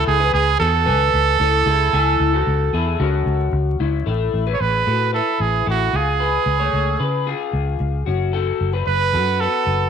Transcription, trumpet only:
0.07 0.32 G#4 loud
0.34 0.58 G#4 loud
0.59 3.49 A4 loud
4.53 4.62 C#5 medium
4.61 5.14 B4 loud
5.14 5.43 A4 medium
5.41 5.67 G#4 medium
5.70 5.97 F#4 medium
5.96 7.55 G#4 medium
8.87 9.42 B4 loud
9.40 9.89 A4 medium

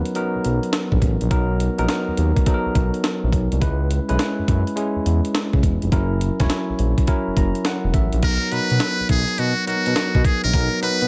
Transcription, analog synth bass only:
0.35 0.39 B1 soft
0.45 0.60 B1 medium
0.92 1.00 A#1 medium
1.02 1.17 A1 medium
1.22 1.29 A#1 medium
1.31 1.69 B1 loud
1.79 1.87 A#1 medium
2.08 2.12 D#2 soft
2.18 2.33 D#2 medium
2.66 2.70 B1 soft
2.76 2.90 B1 medium
3.23 3.31 A#1 loud
3.33 3.48 B1 medium
3.52 3.60 C2 medium
3.62 4.00 C#2 medium
4.10 4.18 B1 medium
4.39 4.43 F#2 soft
4.49 4.63 F#2 loud
4.96 5.00 E2 soft
5.06 5.21 E2 medium
5.54 5.61 C#2 medium
5.63 5.78 E1 medium
5.83 5.90 F1 medium
5.92 6.30 F#1 loud
6.40 6.48 E1 medium
6.70 6.73 A#1 soft
6.79 6.94 A#1 medium
7.27 7.31 F#1 soft
7.37 7.52 F#1 medium
7.84 7.92 E1 medium
7.94 8.09 A1 medium
8.13 8.21 A#1 loud
8.23 8.38 B1 medium
8.52 8.59 B2 soft
8.71 8.79 B2 medium
9.00 9.04 B1 soft
9.10 9.25 B1 medium
9.38 9.53 B2 loud
9.67 9.75 B2 soft
9.86 9.94 B2 medium
10.15 10.23 B2 medium
10.44 10.52 A#1 medium
10.54 10.69 B1 loud
10.82 10.90 B2 soft
11.01 11.08 B2 loud

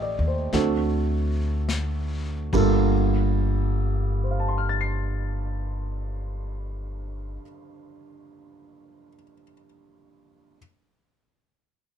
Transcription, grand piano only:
0.00 0.52 A3 medium
0.00 0.52 C4 soft
0.00 0.54 D#4 medium
0.00 0.54 G4 medium
0.00 0.53 A4 medium
0.00 0.34 D5 soft
0.00 0.20 D#5 soft
0.00 0.54 G5 soft
0.28 0.65 C5 soft
0.53 2.53 A3 soft
0.53 2.53 C4 soft
0.53 2.53 D4 soft
0.53 2.53 F#4 soft
0.53 2.54 A4 medium
2.53 7.40 G2 medium
2.53 7.41 G3 soft
2.53 7.42 A#3 medium
2.53 7.43 F4 medium
2.53 7.44 A4 medium
4.24 9.07 C5 soft
4.31 9.14 F5 soft
4.40 9.23 A5 soft
4.48 9.31 C6 soft
4.58 9.41 F6 soft
4.69 9.52 A6 soft
4.81 9.64 C7 soft

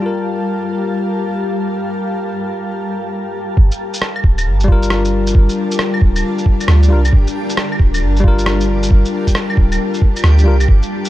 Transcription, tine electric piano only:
0.00 3.54 G3 medium
0.00 3.56 F4 medium
0.06 3.58 A#4 medium
4.64 6.87 G3 loud
4.68 6.89 F4 medium
4.68 6.91 A#4 loud
6.88 6.98 G3 medium
6.88 6.99 F4 medium
6.93 7.00 A#4 medium
8.20 10.42 G3 loud
8.24 10.44 F4 medium
8.24 10.46 A#4 loud
10.44 10.54 G3 medium
10.44 10.55 F4 medium
10.44 10.56 A#4 medium

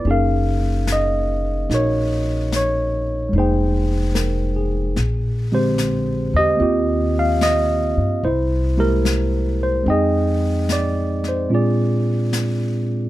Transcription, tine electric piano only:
0.06 3.31 A#3 soft
0.06 3.34 C#4 soft
0.06 1.69 D#4 soft
0.06 3.34 G#4 soft
0.11 1.68 A#4 soft
0.11 0.86 F5 medium
0.92 1.68 D#5 medium
1.70 3.33 D#4 soft
1.70 3.34 F#4 soft
1.70 3.35 A#4 soft
1.74 2.50 C#5 medium
2.56 3.31 C#5 medium
3.29 4.94 G#3 soft
3.29 4.96 A#3 soft
3.36 4.98 D#4 soft
3.36 4.55 G#4 soft
3.36 4.95 C5 medium
3.36 4.99 G5 soft
4.15 4.79 A#4 soft
4.56 5.13 G#4 soft
5.52 6.60 D3 soft
5.52 6.60 G#3 soft
5.52 6.58 C4 soft
5.52 6.38 G4 medium
5.52 6.37 C5 medium
6.37 6.61 G4 medium
6.37 7.19 D#5 medium
6.57 8.21 A#3 soft
6.57 8.22 C4 soft
6.57 8.23 F4 soft
6.62 8.24 G4 medium
7.19 7.44 F5 medium
7.43 8.26 D#5 medium
8.25 8.77 E4 soft
8.25 8.81 C5 medium
8.77 9.82 G#3 soft
8.77 9.86 A#3 soft
8.77 9.86 E4 soft
8.77 9.86 G4 soft
8.77 9.57 A#4 medium
9.63 9.88 C5 medium
9.83 11.48 G#3 soft
9.83 11.49 C4 soft
9.83 11.50 D#4 soft
9.88 11.48 G#4 medium
9.88 10.66 D#5 medium
9.88 11.51 G5 soft
10.72 11.22 D5 medium
11.29 11.51 C5 medium
11.49 13.10 A#2 soft
11.49 13.10 G#3 soft
11.49 13.10 C4 soft
11.49 13.10 D4 soft
11.49 13.10 F4 soft
11.54 13.10 G#4 soft
11.54 12.86 D5 medium

